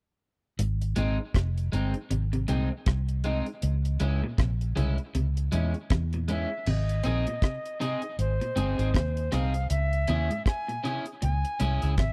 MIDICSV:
0, 0, Header, 1, 7, 480
1, 0, Start_track
1, 0, Key_signature, -4, "major"
1, 0, Tempo, 759494
1, 371, Time_signature, 4, 2, 24, 8
1, 7665, End_track
2, 0, Start_track
2, 0, Title_t, "Recorder"
2, 0, Program_c, 0, 74
2, 3988, Note_on_c, 0, 76, 85
2, 4230, Note_on_c, 0, 75, 89
2, 4240, Note_off_c, 0, 76, 0
2, 4938, Note_off_c, 0, 75, 0
2, 4941, Note_on_c, 0, 75, 83
2, 5160, Note_off_c, 0, 75, 0
2, 5181, Note_on_c, 0, 72, 87
2, 5894, Note_on_c, 0, 77, 85
2, 5903, Note_off_c, 0, 72, 0
2, 6130, Note_off_c, 0, 77, 0
2, 6133, Note_on_c, 0, 76, 99
2, 6587, Note_off_c, 0, 76, 0
2, 6616, Note_on_c, 0, 80, 104
2, 6914, Note_off_c, 0, 80, 0
2, 7099, Note_on_c, 0, 80, 98
2, 7550, Note_off_c, 0, 80, 0
2, 7580, Note_on_c, 0, 76, 92
2, 7665, Note_off_c, 0, 76, 0
2, 7665, End_track
3, 0, Start_track
3, 0, Title_t, "Clean electric guitar"
3, 0, Program_c, 1, 27
3, 607, Note_on_c, 1, 56, 96
3, 613, Note_on_c, 1, 60, 100
3, 619, Note_on_c, 1, 63, 96
3, 738, Note_off_c, 1, 56, 0
3, 741, Note_off_c, 1, 60, 0
3, 744, Note_off_c, 1, 63, 0
3, 1088, Note_on_c, 1, 56, 69
3, 1095, Note_on_c, 1, 60, 75
3, 1100, Note_on_c, 1, 63, 77
3, 1219, Note_off_c, 1, 56, 0
3, 1222, Note_off_c, 1, 60, 0
3, 1225, Note_off_c, 1, 63, 0
3, 1570, Note_on_c, 1, 56, 75
3, 1574, Note_on_c, 1, 60, 84
3, 1581, Note_on_c, 1, 63, 87
3, 1700, Note_off_c, 1, 56, 0
3, 1702, Note_off_c, 1, 60, 0
3, 1705, Note_off_c, 1, 63, 0
3, 2050, Note_on_c, 1, 56, 76
3, 2055, Note_on_c, 1, 60, 80
3, 2059, Note_on_c, 1, 63, 89
3, 2180, Note_off_c, 1, 56, 0
3, 2182, Note_off_c, 1, 60, 0
3, 2184, Note_off_c, 1, 63, 0
3, 2529, Note_on_c, 1, 56, 88
3, 2535, Note_on_c, 1, 61, 92
3, 2537, Note_on_c, 1, 64, 89
3, 2659, Note_off_c, 1, 56, 0
3, 2662, Note_off_c, 1, 61, 0
3, 2663, Note_off_c, 1, 64, 0
3, 3006, Note_on_c, 1, 56, 75
3, 3011, Note_on_c, 1, 61, 78
3, 3015, Note_on_c, 1, 64, 90
3, 3138, Note_off_c, 1, 56, 0
3, 3140, Note_off_c, 1, 61, 0
3, 3142, Note_off_c, 1, 64, 0
3, 3487, Note_on_c, 1, 56, 85
3, 3494, Note_on_c, 1, 61, 80
3, 3498, Note_on_c, 1, 64, 81
3, 3618, Note_off_c, 1, 56, 0
3, 3622, Note_off_c, 1, 61, 0
3, 3624, Note_off_c, 1, 64, 0
3, 3970, Note_on_c, 1, 56, 82
3, 3978, Note_on_c, 1, 61, 84
3, 3981, Note_on_c, 1, 64, 80
3, 4100, Note_off_c, 1, 56, 0
3, 4104, Note_off_c, 1, 61, 0
3, 4106, Note_off_c, 1, 64, 0
3, 4446, Note_on_c, 1, 60, 86
3, 4455, Note_on_c, 1, 63, 83
3, 4460, Note_on_c, 1, 68, 92
3, 4578, Note_off_c, 1, 60, 0
3, 4582, Note_off_c, 1, 63, 0
3, 4585, Note_off_c, 1, 68, 0
3, 4930, Note_on_c, 1, 60, 72
3, 4934, Note_on_c, 1, 63, 83
3, 4941, Note_on_c, 1, 68, 88
3, 5060, Note_off_c, 1, 60, 0
3, 5062, Note_off_c, 1, 63, 0
3, 5065, Note_off_c, 1, 68, 0
3, 5408, Note_on_c, 1, 60, 86
3, 5416, Note_on_c, 1, 63, 86
3, 5420, Note_on_c, 1, 68, 93
3, 5539, Note_off_c, 1, 60, 0
3, 5541, Note_off_c, 1, 68, 0
3, 5543, Note_off_c, 1, 63, 0
3, 5549, Note_on_c, 1, 68, 57
3, 5554, Note_on_c, 1, 63, 55
3, 5558, Note_on_c, 1, 60, 53
3, 5621, Note_off_c, 1, 68, 0
3, 5623, Note_off_c, 1, 63, 0
3, 5625, Note_off_c, 1, 60, 0
3, 5888, Note_on_c, 1, 60, 82
3, 5896, Note_on_c, 1, 63, 92
3, 5900, Note_on_c, 1, 68, 99
3, 6019, Note_off_c, 1, 60, 0
3, 6023, Note_off_c, 1, 63, 0
3, 6025, Note_off_c, 1, 68, 0
3, 6370, Note_on_c, 1, 61, 80
3, 6376, Note_on_c, 1, 64, 94
3, 6381, Note_on_c, 1, 68, 99
3, 6500, Note_off_c, 1, 61, 0
3, 6503, Note_off_c, 1, 64, 0
3, 6505, Note_off_c, 1, 68, 0
3, 6848, Note_on_c, 1, 61, 71
3, 6853, Note_on_c, 1, 64, 87
3, 6859, Note_on_c, 1, 68, 94
3, 6979, Note_off_c, 1, 61, 0
3, 6982, Note_off_c, 1, 64, 0
3, 6985, Note_off_c, 1, 68, 0
3, 7329, Note_on_c, 1, 61, 79
3, 7334, Note_on_c, 1, 64, 82
3, 7339, Note_on_c, 1, 68, 87
3, 7460, Note_off_c, 1, 61, 0
3, 7463, Note_off_c, 1, 64, 0
3, 7465, Note_off_c, 1, 68, 0
3, 7474, Note_on_c, 1, 68, 70
3, 7478, Note_on_c, 1, 64, 61
3, 7484, Note_on_c, 1, 61, 53
3, 7544, Note_off_c, 1, 68, 0
3, 7546, Note_off_c, 1, 64, 0
3, 7549, Note_off_c, 1, 61, 0
3, 7665, End_track
4, 0, Start_track
4, 0, Title_t, "Clean electric guitar"
4, 0, Program_c, 2, 27
4, 372, Note_on_c, 2, 44, 74
4, 459, Note_off_c, 2, 44, 0
4, 609, Note_on_c, 2, 46, 67
4, 696, Note_off_c, 2, 46, 0
4, 1330, Note_on_c, 2, 48, 76
4, 1417, Note_off_c, 2, 48, 0
4, 1472, Note_on_c, 2, 48, 74
4, 1532, Note_off_c, 2, 48, 0
4, 1568, Note_on_c, 2, 46, 80
4, 1656, Note_off_c, 2, 46, 0
4, 2533, Note_on_c, 2, 44, 70
4, 2619, Note_off_c, 2, 44, 0
4, 2677, Note_on_c, 2, 46, 81
4, 2736, Note_off_c, 2, 46, 0
4, 2772, Note_on_c, 2, 48, 76
4, 2858, Note_off_c, 2, 48, 0
4, 3012, Note_on_c, 2, 49, 81
4, 3099, Note_off_c, 2, 49, 0
4, 3254, Note_on_c, 2, 48, 74
4, 3340, Note_off_c, 2, 48, 0
4, 3494, Note_on_c, 2, 46, 74
4, 3580, Note_off_c, 2, 46, 0
4, 3736, Note_on_c, 2, 48, 72
4, 3822, Note_off_c, 2, 48, 0
4, 3880, Note_on_c, 2, 46, 67
4, 3938, Note_off_c, 2, 46, 0
4, 3978, Note_on_c, 2, 44, 75
4, 4062, Note_off_c, 2, 44, 0
4, 4217, Note_on_c, 2, 48, 84
4, 4302, Note_off_c, 2, 48, 0
4, 4460, Note_on_c, 2, 51, 61
4, 4544, Note_off_c, 2, 51, 0
4, 4600, Note_on_c, 2, 46, 76
4, 4657, Note_off_c, 2, 46, 0
4, 4697, Note_on_c, 2, 48, 63
4, 4782, Note_off_c, 2, 48, 0
4, 4934, Note_on_c, 2, 48, 80
4, 5020, Note_off_c, 2, 48, 0
4, 5318, Note_on_c, 2, 46, 73
4, 5376, Note_off_c, 2, 46, 0
4, 5412, Note_on_c, 2, 44, 76
4, 5499, Note_off_c, 2, 44, 0
4, 5649, Note_on_c, 2, 48, 76
4, 5737, Note_off_c, 2, 48, 0
4, 5891, Note_on_c, 2, 46, 73
4, 5978, Note_off_c, 2, 46, 0
4, 6373, Note_on_c, 2, 48, 75
4, 6459, Note_off_c, 2, 48, 0
4, 6512, Note_on_c, 2, 44, 75
4, 6572, Note_off_c, 2, 44, 0
4, 6753, Note_on_c, 2, 46, 76
4, 6813, Note_off_c, 2, 46, 0
4, 6851, Note_on_c, 2, 48, 70
4, 6938, Note_off_c, 2, 48, 0
4, 7091, Note_on_c, 2, 46, 75
4, 7178, Note_off_c, 2, 46, 0
4, 7335, Note_on_c, 2, 44, 71
4, 7421, Note_off_c, 2, 44, 0
4, 7577, Note_on_c, 2, 48, 68
4, 7662, Note_off_c, 2, 48, 0
4, 7665, End_track
5, 0, Start_track
5, 0, Title_t, "Fingered electric bass"
5, 0, Program_c, 3, 33
5, 373, Note_on_c, 3, 32, 94
5, 586, Note_off_c, 3, 32, 0
5, 614, Note_on_c, 3, 32, 90
5, 740, Note_off_c, 3, 32, 0
5, 851, Note_on_c, 3, 29, 94
5, 1065, Note_off_c, 3, 29, 0
5, 1095, Note_on_c, 3, 31, 82
5, 1220, Note_off_c, 3, 31, 0
5, 1332, Note_on_c, 3, 32, 91
5, 1545, Note_off_c, 3, 32, 0
5, 1575, Note_on_c, 3, 36, 73
5, 1700, Note_off_c, 3, 36, 0
5, 1813, Note_on_c, 3, 36, 93
5, 2153, Note_off_c, 3, 36, 0
5, 2296, Note_on_c, 3, 37, 118
5, 2508, Note_off_c, 3, 37, 0
5, 2535, Note_on_c, 3, 37, 94
5, 2660, Note_off_c, 3, 37, 0
5, 2772, Note_on_c, 3, 34, 92
5, 2986, Note_off_c, 3, 34, 0
5, 3017, Note_on_c, 3, 36, 91
5, 3141, Note_off_c, 3, 36, 0
5, 3253, Note_on_c, 3, 37, 87
5, 3466, Note_off_c, 3, 37, 0
5, 3496, Note_on_c, 3, 40, 91
5, 3620, Note_off_c, 3, 40, 0
5, 3734, Note_on_c, 3, 40, 88
5, 4074, Note_off_c, 3, 40, 0
5, 4217, Note_on_c, 3, 32, 108
5, 4428, Note_off_c, 3, 32, 0
5, 4456, Note_on_c, 3, 34, 76
5, 4581, Note_off_c, 3, 34, 0
5, 5174, Note_on_c, 3, 32, 96
5, 5299, Note_off_c, 3, 32, 0
5, 5411, Note_on_c, 3, 31, 77
5, 5538, Note_off_c, 3, 31, 0
5, 5555, Note_on_c, 3, 32, 98
5, 5641, Note_off_c, 3, 32, 0
5, 5653, Note_on_c, 3, 39, 87
5, 5866, Note_off_c, 3, 39, 0
5, 5895, Note_on_c, 3, 36, 78
5, 6107, Note_off_c, 3, 36, 0
5, 6134, Note_on_c, 3, 37, 106
5, 6347, Note_off_c, 3, 37, 0
5, 6375, Note_on_c, 3, 39, 88
5, 6500, Note_off_c, 3, 39, 0
5, 7098, Note_on_c, 3, 37, 94
5, 7222, Note_off_c, 3, 37, 0
5, 7335, Note_on_c, 3, 36, 78
5, 7461, Note_off_c, 3, 36, 0
5, 7479, Note_on_c, 3, 37, 88
5, 7564, Note_off_c, 3, 37, 0
5, 7574, Note_on_c, 3, 32, 82
5, 7665, Note_off_c, 3, 32, 0
5, 7665, End_track
6, 0, Start_track
6, 0, Title_t, "Muted clean electric guitar strokes"
6, 1712, Note_on_c, 9, 29, 46
6, 1775, Note_off_c, 9, 29, 0
6, 3634, Note_on_c, 9, 29, 47
6, 3697, Note_off_c, 9, 29, 0
6, 7665, End_track
7, 0, Start_track
7, 0, Title_t, "Drums"
7, 372, Note_on_c, 9, 42, 99
7, 436, Note_off_c, 9, 42, 0
7, 515, Note_on_c, 9, 42, 44
7, 578, Note_off_c, 9, 42, 0
7, 606, Note_on_c, 9, 42, 73
7, 669, Note_off_c, 9, 42, 0
7, 850, Note_on_c, 9, 36, 98
7, 853, Note_on_c, 9, 42, 76
7, 859, Note_on_c, 9, 37, 94
7, 913, Note_off_c, 9, 36, 0
7, 916, Note_off_c, 9, 42, 0
7, 922, Note_off_c, 9, 37, 0
7, 996, Note_on_c, 9, 42, 50
7, 1059, Note_off_c, 9, 42, 0
7, 1095, Note_on_c, 9, 42, 66
7, 1158, Note_off_c, 9, 42, 0
7, 1226, Note_on_c, 9, 42, 34
7, 1289, Note_off_c, 9, 42, 0
7, 1332, Note_on_c, 9, 42, 87
7, 1395, Note_off_c, 9, 42, 0
7, 1473, Note_on_c, 9, 42, 46
7, 1536, Note_off_c, 9, 42, 0
7, 1568, Note_on_c, 9, 42, 65
7, 1631, Note_off_c, 9, 42, 0
7, 1809, Note_on_c, 9, 42, 76
7, 1811, Note_on_c, 9, 36, 109
7, 1818, Note_on_c, 9, 37, 107
7, 1872, Note_off_c, 9, 42, 0
7, 1874, Note_off_c, 9, 36, 0
7, 1882, Note_off_c, 9, 37, 0
7, 1950, Note_on_c, 9, 42, 46
7, 2013, Note_off_c, 9, 42, 0
7, 2047, Note_on_c, 9, 42, 72
7, 2110, Note_off_c, 9, 42, 0
7, 2189, Note_on_c, 9, 42, 34
7, 2253, Note_off_c, 9, 42, 0
7, 2289, Note_on_c, 9, 42, 94
7, 2352, Note_off_c, 9, 42, 0
7, 2434, Note_on_c, 9, 42, 46
7, 2497, Note_off_c, 9, 42, 0
7, 2526, Note_on_c, 9, 42, 70
7, 2589, Note_off_c, 9, 42, 0
7, 2770, Note_on_c, 9, 36, 110
7, 2772, Note_on_c, 9, 42, 77
7, 2778, Note_on_c, 9, 37, 102
7, 2833, Note_off_c, 9, 36, 0
7, 2835, Note_off_c, 9, 42, 0
7, 2842, Note_off_c, 9, 37, 0
7, 2915, Note_on_c, 9, 42, 52
7, 2978, Note_off_c, 9, 42, 0
7, 3015, Note_on_c, 9, 42, 68
7, 3078, Note_off_c, 9, 42, 0
7, 3148, Note_on_c, 9, 42, 30
7, 3211, Note_off_c, 9, 42, 0
7, 3253, Note_on_c, 9, 42, 83
7, 3316, Note_off_c, 9, 42, 0
7, 3394, Note_on_c, 9, 42, 43
7, 3457, Note_off_c, 9, 42, 0
7, 3491, Note_on_c, 9, 42, 68
7, 3554, Note_off_c, 9, 42, 0
7, 3629, Note_on_c, 9, 42, 32
7, 3693, Note_off_c, 9, 42, 0
7, 3730, Note_on_c, 9, 42, 84
7, 3732, Note_on_c, 9, 36, 108
7, 3740, Note_on_c, 9, 37, 111
7, 3793, Note_off_c, 9, 42, 0
7, 3795, Note_off_c, 9, 36, 0
7, 3803, Note_off_c, 9, 37, 0
7, 3873, Note_on_c, 9, 42, 47
7, 3936, Note_off_c, 9, 42, 0
7, 3972, Note_on_c, 9, 42, 67
7, 4035, Note_off_c, 9, 42, 0
7, 4211, Note_on_c, 9, 49, 87
7, 4274, Note_off_c, 9, 49, 0
7, 4356, Note_on_c, 9, 42, 48
7, 4419, Note_off_c, 9, 42, 0
7, 4446, Note_on_c, 9, 42, 75
7, 4509, Note_off_c, 9, 42, 0
7, 4593, Note_on_c, 9, 42, 50
7, 4656, Note_off_c, 9, 42, 0
7, 4690, Note_on_c, 9, 36, 104
7, 4693, Note_on_c, 9, 42, 72
7, 4699, Note_on_c, 9, 37, 107
7, 4753, Note_off_c, 9, 36, 0
7, 4756, Note_off_c, 9, 42, 0
7, 4763, Note_off_c, 9, 37, 0
7, 4838, Note_on_c, 9, 42, 46
7, 4901, Note_off_c, 9, 42, 0
7, 4938, Note_on_c, 9, 42, 67
7, 5001, Note_off_c, 9, 42, 0
7, 5068, Note_on_c, 9, 42, 44
7, 5131, Note_off_c, 9, 42, 0
7, 5175, Note_on_c, 9, 42, 81
7, 5238, Note_off_c, 9, 42, 0
7, 5318, Note_on_c, 9, 42, 45
7, 5381, Note_off_c, 9, 42, 0
7, 5414, Note_on_c, 9, 42, 67
7, 5478, Note_off_c, 9, 42, 0
7, 5556, Note_on_c, 9, 42, 53
7, 5619, Note_off_c, 9, 42, 0
7, 5653, Note_on_c, 9, 36, 99
7, 5655, Note_on_c, 9, 42, 80
7, 5665, Note_on_c, 9, 37, 111
7, 5716, Note_off_c, 9, 36, 0
7, 5719, Note_off_c, 9, 42, 0
7, 5728, Note_off_c, 9, 37, 0
7, 5795, Note_on_c, 9, 42, 47
7, 5858, Note_off_c, 9, 42, 0
7, 5891, Note_on_c, 9, 42, 69
7, 5893, Note_on_c, 9, 37, 69
7, 5954, Note_off_c, 9, 42, 0
7, 5956, Note_off_c, 9, 37, 0
7, 6030, Note_on_c, 9, 42, 54
7, 6093, Note_off_c, 9, 42, 0
7, 6130, Note_on_c, 9, 42, 99
7, 6193, Note_off_c, 9, 42, 0
7, 6275, Note_on_c, 9, 42, 46
7, 6338, Note_off_c, 9, 42, 0
7, 6368, Note_on_c, 9, 42, 72
7, 6431, Note_off_c, 9, 42, 0
7, 6514, Note_on_c, 9, 42, 53
7, 6577, Note_off_c, 9, 42, 0
7, 6610, Note_on_c, 9, 36, 103
7, 6613, Note_on_c, 9, 42, 79
7, 6619, Note_on_c, 9, 37, 102
7, 6673, Note_off_c, 9, 36, 0
7, 6676, Note_off_c, 9, 42, 0
7, 6683, Note_off_c, 9, 37, 0
7, 6757, Note_on_c, 9, 42, 47
7, 6821, Note_off_c, 9, 42, 0
7, 6858, Note_on_c, 9, 42, 71
7, 6921, Note_off_c, 9, 42, 0
7, 6987, Note_on_c, 9, 42, 47
7, 7051, Note_off_c, 9, 42, 0
7, 7092, Note_on_c, 9, 42, 83
7, 7155, Note_off_c, 9, 42, 0
7, 7234, Note_on_c, 9, 42, 46
7, 7297, Note_off_c, 9, 42, 0
7, 7329, Note_on_c, 9, 42, 67
7, 7393, Note_off_c, 9, 42, 0
7, 7470, Note_on_c, 9, 42, 51
7, 7534, Note_off_c, 9, 42, 0
7, 7570, Note_on_c, 9, 42, 79
7, 7571, Note_on_c, 9, 36, 115
7, 7579, Note_on_c, 9, 37, 117
7, 7633, Note_off_c, 9, 42, 0
7, 7634, Note_off_c, 9, 36, 0
7, 7642, Note_off_c, 9, 37, 0
7, 7665, End_track
0, 0, End_of_file